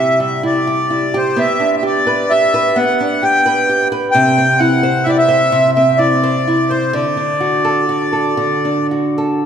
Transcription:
0.00 1.47 C3 medium
0.00 0.20 G3 soft
0.00 0.42 E4 medium
0.00 0.67 G4 medium
0.00 0.19 E5 loud
0.20 1.59 G3 medium
0.20 0.42 E5 medium
0.43 0.89 E4 medium
0.43 1.17 D5 medium
0.67 1.14 G4 medium
0.90 1.46 E4 medium
1.14 1.83 G4 medium
1.14 1.39 C5 medium
1.36 2.75 B3 medium
1.36 1.75 E5 loud
1.60 2.99 D4 medium
1.77 1.83 E5 medium
1.83 2.31 G4 medium
1.83 2.32 D5 medium
2.07 2.53 B4 medium
2.30 3.23 G4 medium
2.30 2.78 E5 loud
2.54 3.45 B4 medium
2.76 4.24 B3 medium
2.76 3.24 F#5 medium
3.01 4.24 D4 medium
3.23 3.69 G4 medium
3.23 3.88 G5 loud
3.46 3.91 B4 medium
3.69 4.60 G4 medium
3.92 4.24 B4 medium
4.11 5.51 C3 medium
4.11 4.60 G5 loud
4.38 5.75 C4 medium
4.58 5.05 E4 medium
4.58 5.06 F#5 medium
4.83 5.27 C5 medium
5.04 5.98 E4 medium
5.04 5.11 E5 loud
5.09 5.17 D5 medium
5.18 5.71 E5 loud
5.29 6.22 C5 medium
5.52 7.03 C3 medium
5.75 7.04 C4 medium
5.75 5.99 E5 medium
5.98 6.46 E4 medium
5.98 6.72 D5 medium
6.23 6.70 C5 medium
6.47 7.04 E4 medium
6.70 6.94 C5 medium
6.70 7.04 C5 medium
6.93 8.37 D3 medium
6.93 8.87 D5 medium
7.17 8.65 D4 medium
7.40 7.89 F#4 medium
7.65 8.12 A4 medium
7.89 8.91 F#4 medium
8.13 9.17 A4 medium
8.37 9.46 D3 medium
8.65 9.46 D4 medium
8.91 9.45 F#4 medium
9.18 9.46 A4 medium

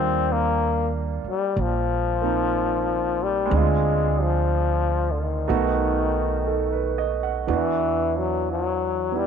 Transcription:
0.00 1.20 D#2 medium
0.00 3.51 G3 soft
0.00 2.20 A#3 soft
0.00 0.34 C4 medium
0.00 3.52 D4 soft
0.00 3.54 F4 medium
0.32 0.91 A#3 medium
1.24 muted upright bass stroke soft
1.29 1.63 G3 medium
1.57 3.47 A#1 medium
1.62 3.25 F3 medium
2.21 3.51 A#3 soft
2.21 3.48 C4 soft
2.21 3.53 D#4 soft
3.23 3.57 G3 medium
3.46 5.46 G#3 medium
3.46 5.47 C4 soft
3.51 5.44 D2 medium
3.51 5.49 D4 soft
3.56 4.24 G#3 medium
3.56 5.51 F4 medium
4.22 5.13 F3 medium
5.12 5.23 D3 soft
5.22 7.19 D#3 medium
5.48 7.45 B1 medium
5.48 7.48 A3 medium
5.48 7.46 B3 soft
5.48 7.49 D#4 soft
5.48 7.47 F#4 medium
6.47 6.95 A4 soft
6.72 7.16 B4 soft
6.98 7.29 D#5 soft
7.23 7.58 F#5 soft
7.47 9.27 E2 medium
7.47 9.27 E3 soft
7.47 9.10 B3 soft
7.47 9.27 D4 soft
7.47 9.27 F#4 soft
7.53 8.20 E3 medium
8.18 8.49 F#3 medium
8.51 9.19 F#3 medium
9.12 9.27 B3 soft
9.12 9.27 E4 soft
9.18 9.27 G3 medium

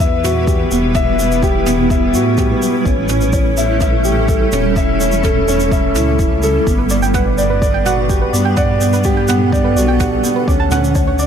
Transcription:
0.00 0.64 E2 loud
0.00 2.82 G3 medium
0.00 0.71 B3 medium
0.00 2.82 B3 medium
0.00 6.63 E4 medium
0.00 2.82 B4 medium
0.00 2.88 B4 medium
0.00 0.95 E5 medium
0.00 0.91 F#5 medium
0.24 0.37 F#4 medium
0.24 mid tom medium
0.24 shaker medium
0.47 0.70 G4 medium
0.47 kick loud
0.47 shaker medium
0.71 2.15 E1 medium
0.71 0.94 B3 medium
0.71 shaker medium
0.95 1.09 E5 loud
0.95 kick loud
0.95 mid tom medium
0.95 shaker medium
1.19 1.42 B3 medium
1.19 shaker medium
1.32 shaker soft
1.43 1.66 G4 loud
1.43 kick loud
1.43 shaker medium
1.66 1.89 B3 loud
1.66 mid tom medium
1.66 shaker medium
1.90 2.13 E5 medium
1.90 kick loud
1.90 shaker medium
2.14 2.54 A2 medium
2.14 2.28 F#4 medium
2.14 shaker medium
2.38 2.61 G4 medium
2.38 kick loud
2.38 mid tom medium
2.38 shaker medium
2.62 2.85 B3 medium
2.62 shaker medium
2.85 4.45 A1 loud
2.85 10.43 G3 medium
2.85 6.62 A3 medium
2.85 6.63 C#4 medium
2.85 3.08 C#4 medium
2.85 6.62 A4 medium
2.85 kick medium
2.85 shaker soft
3.09 3.32 C#4 medium
3.09 mid tom medium
3.09 shaker medium
3.21 shaker soft
3.33 3.56 C#5 medium
3.33 kick loud
3.33 shaker medium
3.57 3.80 E5 medium
3.57 shaker medium
3.81 4.04 E5 medium
3.81 kick loud
3.81 mid tom medium
3.81 shaker medium
4.04 4.18 G4 medium
4.04 shaker medium
4.28 4.51 A4 medium
4.28 kick loud
4.28 shaker medium
4.52 5.97 E1 medium
4.52 4.75 C#4 medium
4.52 mid tom medium
4.52 shaker medium
4.76 4.90 E5 loud
4.76 kick loud
4.76 shaker soft
5.00 5.23 C#4 medium
5.00 shaker medium
5.12 shaker soft
5.24 5.46 A4 loud
5.24 kick loud
5.24 mid tom medium
5.24 shaker medium
5.48 5.70 C#4 loud
5.48 shaker medium
5.60 shaker soft
5.71 5.94 E5 medium
5.71 kick loud
5.71 shaker medium
5.95 6.19 C#2 medium
5.95 6.09 E4 medium
5.95 mid tom medium
5.95 shaker medium
6.19 6.27 E1 medium
6.19 6.42 E4 medium
6.19 kick loud
6.19 shaker soft
6.31 6.60 C#2 medium
6.43 6.66 A4 loud
6.43 shaker medium
6.67 8.26 G1 loud
6.67 6.89 B3 medium
6.67 10.44 B3 medium
6.67 10.44 D4 medium
6.67 8.55 B4 medium
6.67 11.27 F#5 medium
6.67 kick loud
6.67 shaker medium
6.78 6.85 B4 medium
6.90 7.13 B3 medium
6.90 6.93 D5 medium
6.90 shaker medium
7.02 7.07 G5 loud
7.02 shaker soft
7.14 7.37 B4 medium
7.14 7.21 F#5 loud
7.14 kick loud
7.14 mid tom medium
7.14 shaker medium
7.38 7.60 D5 medium
7.38 shaker medium
7.50 7.57 B4 medium
7.61 7.84 D5 medium
7.61 7.65 D5 medium
7.61 kick loud
7.61 shaker medium
7.74 7.78 G5 loud
7.85 7.99 F#4 medium
7.85 7.92 F#5 loud
7.85 mid tom medium
7.85 shaker medium
8.09 8.32 G4 medium
8.09 kick loud
8.09 shaker medium
8.21 8.28 B4 medium
8.33 9.77 G2 medium
8.33 8.56 B3 medium
8.33 8.36 D5 medium
8.33 shaker medium
8.45 8.50 G5 medium
8.57 10.46 A4 medium
8.57 8.71 D5 loud
8.57 8.64 F#5 loud
8.57 kick loud
8.57 mid tom medium
8.57 shaker medium
8.81 9.03 B3 medium
8.81 shaker medium
8.93 9.00 B4 medium
8.93 shaker soft
9.04 9.27 G4 loud
9.04 9.07 D5 medium
9.04 kick loud
9.04 shaker medium
9.17 9.21 G5 loud
9.28 9.51 B3 loud
9.28 9.35 F#5 loud
9.28 mid tom medium
9.28 shaker medium
9.52 9.75 D5 medium
9.52 kick loud
9.52 shaker medium
9.64 9.71 B4 medium
9.76 10.17 B1 medium
9.76 9.90 F#4 medium
9.76 9.79 D5 medium
9.76 shaker medium
9.88 9.93 G5 medium
10.00 10.23 G4 medium
10.00 10.07 F#5 loud
10.00 kick loud
10.00 mid tom medium
10.00 shaker medium
10.23 10.46 B3 medium
10.23 shaker medium
10.36 10.42 B4 medium
10.48 11.27 D2 loud
10.48 11.27 D3 medium
10.48 11.27 A3 medium
10.48 10.70 C#4 medium
10.48 10.50 D5 medium
10.48 11.27 C#6 medium
10.48 kick loud
10.48 shaker medium
10.60 10.64 A5 loud
10.71 10.94 C#4 medium
10.71 10.78 F#5 loud
10.71 mid tom medium
10.71 shaker medium
10.84 shaker soft
10.95 11.18 C#5 medium
10.95 kick loud
10.95 shaker medium
11.07 11.14 C#5 medium
11.19 11.27 D5 medium
11.19 11.22 D5 medium
11.19 shaker medium

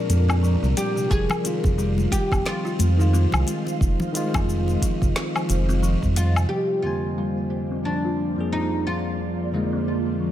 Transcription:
0.00 1.08 A#2 medium
0.00 1.09 G#3 medium
0.00 1.10 D4 loud
0.00 1.06 F4 medium
0.00 0.85 G#4 loud
0.00 1.07 A#4 medium
0.00 1.07 D5 medium
0.00 1.06 A#5 medium
0.09 0.56 F2 loud
0.09 closed hi-hat medium
0.09 muted conga medium
0.09 shaker medium
0.29 0.42 C4 loud
0.29 low woodblock medium
0.29 shaker soft
0.43 0.61 F3 medium
0.43 shaker soft
0.62 0.74 C2 loud
0.62 0.94 G3 medium
0.62 shaker soft
0.77 1.12 G4 loud
0.77 closed hi-hat medium
0.77 muted conga soft
0.77 shaker medium
0.96 1.09 C3 medium
0.96 shaker soft
1.10 1.26 F1 medium
1.10 1.43 F3 medium
1.10 6.46 F4 medium
1.10 2.11 G#4 loud
1.10 6.46 C5 medium
1.10 6.46 D#5 medium
1.10 6.46 F5 loud
1.10 kick loud
1.10 shaker soft
1.30 low conga medium
1.30 low woodblock medium
1.30 shaker soft
1.43 2.93 D#3 medium
1.43 1.76 C4 medium
1.43 2.95 F4 medium
1.43 closed hi-hat loud
1.43 high conga soft
1.43 shaker medium
1.64 2.07 F1 medium
1.64 kick loud
1.64 low conga medium
1.64 shaker soft
1.78 1.97 G3 loud
1.78 shaker soft
1.98 high conga medium
1.98 shaker soft
2.12 2.43 G4 loud
2.12 kick medium
2.12 closed hi-hat loud
2.12 shaker medium
2.31 2.43 F1 medium
2.31 2.45 C4 loud
2.31 kick loud
2.31 high conga soft
2.31 low woodblock medium
2.31 shaker soft
2.45 2.63 F3 medium
2.45 5.79 F4 medium
2.45 snare medium
2.45 muted conga medium
2.45 shaker soft
2.65 2.97 F4 loud
2.65 shaker soft
2.79 3.26 F2 loud
2.79 closed hi-hat medium
2.79 high conga medium
2.79 shaker medium
2.97 4.10 D#3 medium
2.97 4.11 G#3 medium
2.97 3.12 D#4 medium
2.97 shaker soft
3.01 4.12 F4 medium
3.13 3.32 C4 medium
3.13 shaker soft
3.32 3.44 C2 loud
3.32 low conga medium
3.32 low woodblock medium
3.32 shaker soft
3.47 closed hi-hat loud
3.47 muted conga medium
3.47 shaker medium
3.67 muted conga soft
3.67 shaker soft
3.81 3.96 F1 medium
3.81 kick loud
3.81 shaker soft
4.00 low conga medium
4.00 shaker soft
4.13 6.48 D#3 medium
4.13 4.33 G#3 medium
4.13 6.49 G#3 medium
4.13 6.50 F4 loud
4.13 closed hi-hat loud
4.13 high conga soft
4.13 shaker medium
4.34 4.77 F1 medium
4.34 4.80 C4 loud
4.34 kick loud
4.34 muted conga medium
4.34 low conga medium
4.34 low woodblock medium
4.34 shaker soft
4.49 shaker soft
4.68 high conga medium
4.68 shaker soft
4.82 5.01 F3 medium
4.82 kick medium
4.82 closed hi-hat loud
4.82 shaker medium
5.02 5.13 F1 medium
5.02 kick medium
5.02 high conga soft
5.02 shaker soft
5.16 5.34 C4 medium
5.16 snare medium
5.16 shaker soft
5.35 5.48 F3 medium
5.35 low woodblock medium
5.35 shaker soft
5.49 5.96 F1 loud
5.49 closed hi-hat medium
5.49 muted conga medium
5.49 shaker medium
5.69 5.81 C4 loud
5.69 shaker soft
5.83 6.00 F3 medium
5.83 shaker soft
6.02 6.46 F2 medium
6.02 6.34 G3 medium
6.02 kick medium
6.02 shaker soft
6.16 6.48 F4 medium
6.16 closed hi-hat medium
6.16 muted conga medium
6.16 shaker medium
6.36 6.49 C3 medium
6.36 low woodblock medium
6.36 shaker soft
6.49 10.32 F3 medium
6.49 6.82 F3 medium
6.49 10.32 A#3 medium
6.49 10.32 F4 medium
6.49 6.82 G4 medium
6.49 10.32 C5 medium
6.49 10.32 D5 medium
6.49 shaker soft
6.71 shaker soft
6.82 8.33 F2 medium
6.82 8.34 D3 medium
6.82 8.34 A#3 medium
6.82 7.16 C4 medium
6.82 7.46 F4 medium
6.82 shaker medium
6.87 8.35 G#5 medium
7.04 shaker soft
7.18 7.36 G3 medium
7.18 shaker soft
7.38 shaker soft
7.52 shaker medium
7.71 7.84 C4 medium
7.85 8.03 F3 medium
7.85 8.48 D4 medium
8.05 8.36 F4 medium
8.37 9.49 F2 medium
8.37 9.50 F3 medium
8.37 9.50 A#3 medium
8.37 8.51 D4 medium
8.37 9.51 G#4 medium
8.52 8.71 C4 medium
8.52 8.84 D#4 medium
8.87 10.32 F4 medium
9.52 10.32 F2 medium
9.52 10.32 D3 medium
9.52 9.72 G#3 medium
9.52 10.32 G#3 medium
9.52 10.32 A#3 medium
9.73 10.19 C4 medium
10.20 10.32 F3 medium

